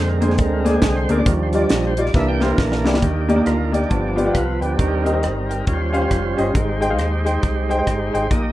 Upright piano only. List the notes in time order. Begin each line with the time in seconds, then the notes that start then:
Already playing: A#2
0.21 A#3 D4 G#4 C5
0.64 A#3 D4 G#4 D5
1.09 A#3 D4 G#4 A#4
1.18 A#3 D4 G#4 D5
1.27 D#3
1.53 G3 D#4 F4 D5
1.98 G3 D#4 F4 D5
2.15 C3
2.40 A#3 E4 G4 C5
2.84 A#3 E4 G4 D5
2.93 A#3 E4 G4 D5
3.03 D#3
3.29 A#3 D#4 G4 D5
3.36 A#3 D#4 G4 D5
3.72 A#3 D#4 G4 D5
3.89 G2
4.16 B3 F4 G4 D5
4.25 B3 F4 G4 D5
4.33 F5
4.61 B4 G5
4.77 D#3
5.04 C4 G4 A#4 D#5
5.12 C4 G4 A#4 D#5
5.22 G4 D#5
5.49 A#4 G5
5.66 D#3
5.93 C#4 G4 C5 F5
6.00 C#4 G4 C5 F5
6.37 C#4 G4 C5 D#5
6.54 G#2
6.81 D#4 G#4 C5 G5
6.89 D#4 G#4 C5 F5
7.25 D#4 G#4 C5 G5
7.69 D#4 G#4 C5 G5
7.77 D#4 G#4 C5 G5
8.13 D#4 G#4 C5 G5
8.31 A#2